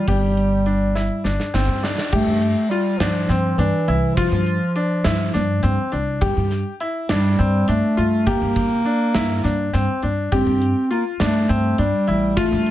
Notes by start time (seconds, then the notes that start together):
0.07 G1 G3 G4, kick, closed hi-hat
0.37 closed hi-hat
0.66 D4, closed hi-hat
0.95 E4, snare
1.24 G1 D4, snare
1.40 snare
1.54 G1 C4, snare
1.68 G2
1.83 D4, snare
1.98 snare
2.12 G2 A3 G4, kick, crash
2.27 G2
2.42 closed hi-hat
2.69 G3 F4, closed hi-hat
2.98 G2 F3 D4, snare, closed hi-hat
3.29 G2 C4, snare, closed hi-hat
3.57 G2 E3 D4, closed hi-hat
3.88 C2 E4, closed hi-hat
4.14 F3 F4, kick, closed hi-hat
4.31 G2
4.47 closed hi-hat
4.76 D4, closed hi-hat
5.04 G2 E4, snare, closed hi-hat
5.34 G2 D4, snare, closed hi-hat
5.63 G2 C4, closed hi-hat
5.92 C2 D4, closed hi-hat
6.21 G2 G4, kick, closed hi-hat
6.37 G2
6.51 snare, closed hi-hat
6.80 E4, closed hi-hat
7.09 G2 G3 D4, snare, closed hi-hat
7.39 G2 C4, closed hi-hat
7.68 G2 A3 D4, closed hi-hat
7.97 G2 F4, closed hi-hat
8.27 A#3 G4, kick, closed hi-hat
8.42 G2
8.56 kick, closed hi-hat
8.85 D4, closed hi-hat
9.15 G2 E4, snare, closed hi-hat
9.44 G2 D4, snare, closed hi-hat
9.73 G2 C4, snare, closed hi-hat
10.03 G2 D4, closed hi-hat
10.32 G2 C4 G4, kick, closed hi-hat
10.46 G2
10.62 closed hi-hat
10.91 A#3 F4, closed hi-hat
11.20 G2 A3 D4, snare, closed hi-hat
11.49 G2 C4, closed hi-hat
11.78 G2 G3 D4, closed hi-hat
12.07 A1 E4, closed hi-hat
12.37 A3 F4, kick, closed hi-hat
12.52 G2
12.66 closed hi-hat